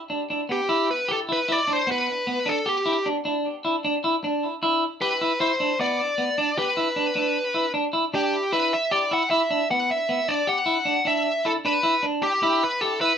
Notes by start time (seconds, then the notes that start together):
0.10 D4
0.30 D4
0.49 B3 G4
0.69 E4
0.91 B4
1.08 G4 A4
1.29 E4 B4
1.49 E4 D5
1.68 D4
1.73 C5
1.87 B3
1.91 B4
2.27 B3
2.46 D4 A4
2.66 G4
2.86 E4
3.06 D4
3.25 D4
3.65 E4
3.85 D4
4.04 E4
4.24 D4
4.63 E4
5.01 G4 B4
5.21 E4
5.40 E4 C5
5.60 D4
5.79 B3 D5
6.18 B3
6.38 D4
6.57 G4 B4
6.77 E4
6.96 D4
7.16 D4
7.54 E4
7.74 D4
7.93 E4
8.14 D4 G4
8.52 E4 B4
8.73 E5
8.91 G4 D5
9.11 E4 F#5
9.30 E4 E5
9.51 D4
9.71 B3 F#5
9.91 E5
10.09 B3
10.28 D4 D5
10.47 G4 F#5
10.66 E4
10.85 D4
11.05 D4 E5
11.45 E4 A4
11.65 D4 B4
11.83 E4
12.03 D4
12.23 G4
12.43 E4
12.63 B4
12.81 G4 A4
13.01 E4 B4